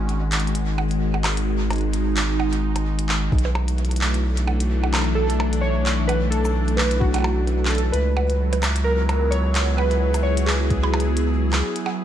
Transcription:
0.00 3.30 G#1 medium
0.00 3.32 D#3 medium
0.00 3.32 G#3 medium
0.00 1.31 C#4 medium
0.00 8.58 F#4 medium
0.09 closed hi-hat medium
0.32 clap loud
0.32 closed hi-hat medium
0.40 closed hi-hat medium
0.47 closed hi-hat medium
0.55 closed hi-hat loud
0.78 percussion blips medium
0.91 closed hi-hat medium
1.14 3.32 D#4 medium
1.14 percussion blips medium
1.24 clap loud
1.24 closed hi-hat medium
1.24 percussion blips medium
1.37 closed hi-hat loud
1.70 closed hi-hat medium
1.70 percussion blips medium
1.73 closed hi-hat soft
1.76 closed hi-hat soft
1.78 closed hi-hat soft
1.81 closed hi-hat soft
1.93 closed hi-hat medium
2.17 clap loud
2.17 closed hi-hat medium
2.40 percussion blips medium
2.53 closed hi-hat medium
2.76 closed hi-hat medium
2.76 percussion blips soft
2.99 closed hi-hat loud
3.09 clap loud
3.32 7.92 B1 medium
3.32 7.94 E3 medium
3.32 kick medium
3.39 closed hi-hat medium
3.45 7.94 A3 medium
3.45 percussion blips medium
3.55 percussion blips medium
3.68 closed hi-hat medium
3.78 closed hi-hat soft
3.85 7.93 D4 medium
3.85 closed hi-hat medium
3.91 closed hi-hat medium
3.96 closed hi-hat medium
4.01 clap loud
4.14 closed hi-hat medium
4.37 closed hi-hat medium
4.47 percussion blips medium
4.60 closed hi-hat medium
4.83 percussion blips medium
4.94 clap loud
4.94 closed hi-hat medium
4.94 percussion blips medium
4.96 closed hi-hat soft
4.96 percussion blips medium
4.99 percussion blips soft
5.01 percussion blips soft
5.04 percussion blips soft
5.15 5.63 A4 loud
5.30 closed hi-hat medium
5.40 percussion blips medium
5.53 closed hi-hat medium
5.61 6.10 C#5 loud
5.86 clap loud
5.86 closed hi-hat medium
6.08 6.18 B4 loud
6.08 closed hi-hat medium
6.08 percussion blips medium
6.30 6.79 A4 loud
6.30 closed hi-hat medium
6.45 percussion blips soft
6.45 shaker medium
6.68 closed hi-hat medium
6.77 7.01 B4 medium
6.77 clap loud
6.91 closed hi-hat medium
7.00 7.66 F#4 medium
7.00 kick medium
7.14 closed hi-hat medium
7.14 percussion blips medium
7.16 percussion blips medium
7.18 percussion blips medium
7.20 percussion blips soft
7.22 percussion blips soft
7.24 percussion blips medium
7.47 closed hi-hat soft
7.65 7.94 A4 medium
7.65 clap loud
7.71 closed hi-hat soft
7.75 closed hi-hat soft
7.78 closed hi-hat medium
7.92 11.63 C#2 medium
7.92 12.04 F#3 loud
7.92 8.58 B4 medium
7.92 closed hi-hat medium
8.17 12.04 E4 medium
8.17 percussion blips loud
8.30 closed hi-hat medium
8.36 12.04 B3 medium
8.53 closed hi-hat medium
8.53 percussion blips medium
8.63 12.04 G#4 medium
8.63 clap loud
8.63 percussion blips medium
8.63 shaker medium
8.76 closed hi-hat medium
8.84 9.33 A#4 loud
9.09 closed hi-hat medium
9.09 percussion blips medium
9.31 9.79 C#5 loud
9.31 closed hi-hat medium
9.55 clap loud
9.55 closed hi-hat medium
9.77 10.20 B4 loud
9.77 percussion blips medium
9.91 closed hi-hat medium
10.14 closed hi-hat medium
10.14 percussion blips soft
10.14 shaker medium
10.23 10.47 C#5 loud
10.37 closed hi-hat medium
10.46 12.04 G#4 medium
10.46 clap loud
10.70 kick medium
10.70 closed hi-hat medium
10.83 percussion blips medium
10.94 percussion blips medium
11.00 closed hi-hat medium
11.17 closed hi-hat medium
11.53 clap loud
11.53 closed hi-hat medium
11.53 percussion blips soft
11.76 closed hi-hat medium
11.86 percussion blips loud

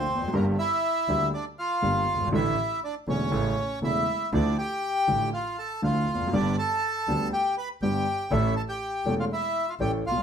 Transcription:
0.00 0.31 C4 medium
0.00 0.35 C5 medium
0.08 0.32 F1 soft
0.15 0.21 E2 soft
0.22 0.27 F2 medium
0.28 0.34 F#2 medium
0.33 0.54 G1 medium
0.33 0.54 G2 medium
0.33 0.54 D3 medium
0.33 0.54 G3 medium
0.33 0.54 A#3 medium
0.33 0.46 A#3 medium
0.33 0.54 G4 medium
0.33 0.45 A#4 medium
0.59 1.29 E4 medium
0.59 1.29 E5 medium
1.08 1.29 D2 medium
1.08 1.29 D2 soft
1.08 1.29 D3 soft
1.08 1.29 G3 soft
1.08 1.29 A#3 soft
1.08 1.29 G4 soft
1.34 1.45 D4 medium
1.34 1.45 D5 medium
1.59 2.29 F4 medium
1.59 2.29 F5 medium
1.82 2.03 G1 soft
1.82 2.03 G1 medium
1.82 2.03 G2 medium
1.82 2.03 D3 soft
1.82 2.03 G3 soft
1.82 2.03 A#3 soft
1.82 2.03 G4 soft
2.08 2.31 G1 soft
2.14 2.20 F#1 soft
2.20 2.26 G1 medium
2.27 2.33 G#1 medium
2.32 2.53 A1 medium
2.32 2.53 A2 medium
2.32 2.53 D3 medium
2.32 2.53 E3 medium
2.32 2.53 A3 medium
2.32 2.53 E4 medium
2.32 2.80 E4 medium
2.32 2.80 E5 medium
2.84 2.95 D4 medium
2.84 2.95 D5 medium
3.07 3.28 E1 medium
3.07 3.28 E1 soft
3.07 3.28 E2 soft
3.07 3.28 D3 soft
3.07 3.28 E3 soft
3.07 3.28 A3 soft
3.07 3.79 C#4 medium
3.07 3.28 E4 soft
3.07 3.80 C#5 medium
3.31 3.53 A1 medium
3.31 3.53 A2 medium
3.31 3.52 C#3 medium
3.31 3.53 E3 medium
3.31 3.53 A3 medium
3.31 3.53 E4 medium
3.81 4.03 E1 soft
3.81 4.03 E2 soft
3.81 4.03 C#3 soft
3.81 4.03 E3 soft
3.81 4.03 A3 soft
3.81 4.03 E4 soft
3.81 4.30 E4 medium
3.81 4.30 E5 medium
4.32 4.54 D2 medium
4.32 4.54 D3 medium
4.32 4.54 F3 medium
4.32 4.54 A3 medium
4.32 4.57 D4 medium
4.32 4.54 E4 medium
4.32 4.57 D5 medium
4.58 5.30 G4 medium
4.58 5.29 G5 medium
5.08 5.29 A1 medium
5.08 5.29 A1 soft
5.08 5.29 A2 soft
5.08 5.29 D3 soft
5.08 5.29 F3 soft
5.08 5.29 A3 soft
5.08 5.29 E4 soft
5.34 5.57 F4 medium
5.34 5.59 F5 medium
5.58 5.81 A4 medium
5.58 5.81 A5 medium
5.82 6.04 D2 medium
5.82 6.04 D2 soft
5.82 6.03 D3 soft
5.82 6.03 F3 soft
5.82 6.04 A3 soft
5.82 6.04 E4 soft
5.82 6.30 F4 medium
5.82 6.35 F5 medium
6.09 6.32 F1 soft
6.14 6.20 E2 soft
6.20 6.26 F2 medium
6.27 6.33 F#2 medium
6.33 6.53 G1 medium
6.33 6.54 G1 medium
6.33 6.54 G2 medium
6.33 6.54 D3 medium
6.33 6.54 G3 medium
6.33 6.54 B3 medium
6.33 6.56 D4 medium
6.33 6.54 G4 medium
6.33 6.56 D5 medium
6.58 7.28 A4 medium
6.58 7.29 A5 medium
7.08 7.28 D2 medium
7.08 7.29 D3 soft
7.08 7.28 G3 soft
7.08 7.29 B3 soft
7.08 7.29 G4 soft
7.33 7.55 G4 medium
7.33 7.55 G5 medium
7.58 7.68 B4 medium
7.58 7.69 B5 medium
7.81 8.02 G1 medium
7.81 8.03 G1 medium
7.81 8.03 G2 soft
7.81 8.03 D3 soft
7.81 8.03 G3 soft
7.81 8.03 B3 soft
7.81 8.28 G4 medium
7.81 8.03 G4 soft
7.81 8.33 G5 medium
8.31 8.52 A1 medium
8.31 8.52 A2 medium
8.31 8.52 E3 medium
8.31 8.52 A3 medium
8.31 8.52 C#4 medium
8.31 8.54 E4 medium
8.31 8.52 A4 medium
8.31 8.55 E5 medium
8.56 8.62 A4 medium
8.56 8.62 A5 medium
8.69 9.15 G4 medium
8.69 9.15 G5 medium
9.05 9.26 E1 medium
9.05 9.27 E1 soft
9.05 9.27 E2 medium
9.05 9.26 E3 soft
9.05 9.26 A3 soft
9.05 9.27 C#4 soft
9.05 9.27 A4 soft
9.20 9.25 F4 medium
9.20 9.25 F5 medium
9.32 9.66 E4 medium
9.32 9.70 E5 medium
9.69 9.74 F4 medium
9.69 9.75 F5 medium
9.79 10.00 A1 soft
9.79 10.01 A1 soft
9.79 10.01 A2 soft
9.79 10.01 E3 soft
9.79 10.01 A3 soft
9.79 10.01 C#4 soft
9.79 9.91 G4 medium
9.79 10.01 A4 soft
9.79 9.92 G5 medium
10.04 10.23 C2 soft
10.04 10.23 F4 medium
10.04 10.23 F5 medium
10.11 10.17 B1 soft
10.17 10.23 C2 medium

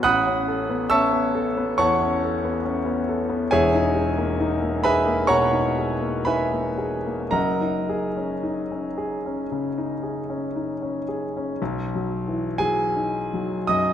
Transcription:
0.03 1.73 A1 medium
0.03 0.86 F#5 medium
0.03 0.86 B5 medium
0.03 0.86 D#6 loud
0.03 0.89 F#6 loud
0.27 0.60 C#4 medium
0.48 0.81 A4 medium
0.70 1.03 B3 medium
0.90 1.25 C#4 medium
0.90 1.73 E5 medium
0.90 1.73 A5 medium
0.90 1.73 C#6 medium
0.90 1.77 E6 loud
1.13 1.46 B3 soft
1.35 1.69 A4 medium
1.58 1.91 B3 medium
1.78 2.12 E2 medium
1.78 2.60 C#5 medium
1.78 2.60 F#5 medium
1.78 2.60 A5 medium
1.78 2.64 C#6 loud
2.02 2.35 C#4 medium
2.24 2.56 A4 medium
2.45 2.77 B3 medium
2.65 2.98 C#4 medium
2.86 3.20 B3 medium
3.09 3.43 A4 medium
3.29 3.51 B3 medium
3.51 5.30 E1 medium
3.51 5.30 E2 medium
3.51 3.94 G#4 medium
3.51 4.83 C#5 medium
3.51 4.83 E5 medium
3.51 4.83 G#5 loud
3.74 4.09 D#4 medium
3.95 4.31 G#4 medium
4.18 4.54 A#3 medium
4.40 4.77 D#4 medium
4.62 5.00 A#3 soft
4.84 5.23 G#4 medium
4.84 5.28 B4 medium
4.84 5.28 E5 medium
4.84 5.28 G#5 medium
4.84 5.31 B5 loud
5.07 5.45 A#3 medium
5.27 5.69 B2 medium
5.27 6.23 C#5 medium
5.27 6.23 F#5 medium
5.27 6.23 A#5 medium
5.27 6.27 C#6 loud
5.53 5.93 D#4 medium
5.79 6.18 G#4 soft
6.02 6.43 A#3 soft
6.25 6.69 D#4 soft
6.25 7.30 B4 medium
6.25 7.30 E5 medium
6.25 7.30 G#5 medium
6.25 7.33 B5 loud
6.52 6.96 A#3 soft
6.78 7.23 G#4 medium
7.06 7.35 A#3 soft
7.31 9.46 F#1 medium
7.31 9.46 F#2 medium
7.31 11.03 A#4 medium
7.31 11.03 D#5 medium
7.31 11.03 F#5 medium
7.31 11.06 A#5 medium
7.61 8.06 D#4 soft
7.89 8.33 G#4 medium
8.17 8.60 C#4 soft
8.43 8.87 D#4 soft
8.72 9.15 C#4 soft
8.98 9.41 G#4 medium
9.26 9.68 C#4 soft
9.52 9.93 C#3 soft
9.78 10.19 D#4 soft
10.03 10.45 G#4 soft
10.30 10.71 C#4 soft
10.56 10.98 D#4 soft
10.82 11.25 C#4 soft
11.09 11.50 G#4 soft
11.37 11.61 C#4 soft
11.62 13.65 B1 medium
11.95 12.46 F#3 soft
12.28 12.60 E3 soft
12.58 13.18 F#3 medium
12.58 13.65 G#4 medium
12.58 13.68 G#5 loud
12.97 13.55 D#4 soft
13.34 13.90 F#3 medium
13.67 13.93 F#2 medium
13.67 13.93 D#5 medium
13.67 13.93 D#6 loud

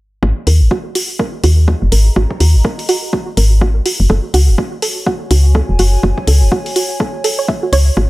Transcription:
0.23 0.32 G#1 loud
0.23 0.26 F#4 medium
0.23 5.05 G#4 medium
0.23 kick loud
0.47 0.63 D#2 medium
0.47 0.52 A#4 medium
0.47 open hi-hat loud
0.56 4.64 D#5 medium
0.61 0.68 G#1 medium
0.71 0.76 F#4 loud
0.71 kick loud
0.95 0.98 F#4 medium
0.95 open hi-hat loud
1.19 1.25 A#4 medium
1.19 kick loud
1.44 1.75 D#2 loud
1.44 1.49 F#4 loud
1.44 3.86 A#5 medium
1.44 open hi-hat loud
1.68 1.71 F#4 medium
1.68 kick loud
1.82 1.89 F#1 medium
1.92 2.10 G#1 medium
1.92 1.97 A#4 medium
1.92 open hi-hat loud
2.16 2.26 G#1 loud
2.16 2.21 F#4 loud
2.16 kick loud
2.31 kick medium
2.40 2.56 D#2 medium
2.40 2.44 F#4 medium
2.40 open hi-hat loud
2.55 2.61 G#1 medium
2.65 2.70 A#4 medium
2.65 kick loud
2.79 open hi-hat medium
2.89 2.94 F#4 loud
2.89 open hi-hat loud
3.13 3.16 F#4 medium
3.13 kick loud
3.37 3.80 G#1 loud
3.37 3.42 A#4 medium
3.37 open hi-hat loud
3.61 3.67 F#4 medium
3.61 kick loud
3.86 8.10 F#4 medium
3.86 3.89 F#4 medium
3.86 open hi-hat loud
4.00 4.07 F#1 medium
4.05 8.10 C#5 medium
4.10 4.19 F#1 medium
4.10 4.15 A4 medium
4.10 kick loud
4.34 4.50 C#2 medium
4.34 4.39 F#4 loud
4.34 open hi-hat loud
4.48 4.55 F#1 loud
4.58 4.61 F#4 medium
4.58 kick loud
4.79 4.88 A4 medium
4.79 8.10 G#5 medium
4.79 open hi-hat loud
5.07 5.12 F#4 loud
5.07 kick loud
5.31 5.62 C#2 loud
5.31 5.34 F#4 medium
5.31 open hi-hat loud
5.55 5.60 A4 medium
5.55 kick loud
5.69 5.76 E1 medium
5.79 5.97 F#1 medium
5.79 5.84 F#4 loud
5.79 open hi-hat loud
6.03 6.13 F#1 medium
6.03 6.06 F#4 medium
6.03 kick loud
6.18 kick medium
6.27 6.43 C#2 medium
6.27 6.33 A4 medium
6.27 open hi-hat loud
6.42 6.48 F#1 medium
6.52 6.57 F#4 loud
6.52 kick loud
6.66 open hi-hat medium
6.76 6.79 F#4 medium
6.76 open hi-hat loud
7.00 7.05 A4 medium
7.00 kick loud
7.24 7.29 A4 medium
7.24 open hi-hat loud
7.39 7.41 C#5 medium
7.48 7.52 E5 medium
7.48 kick loud
7.63 7.66 F#4 medium
7.73 7.90 C#2 medium
7.73 7.78 C#5 loud
7.73 open hi-hat loud
7.97 8.07 G#1 medium
7.97 8.00 F#4 medium
7.97 8.10 G#4 medium
7.97 kick loud

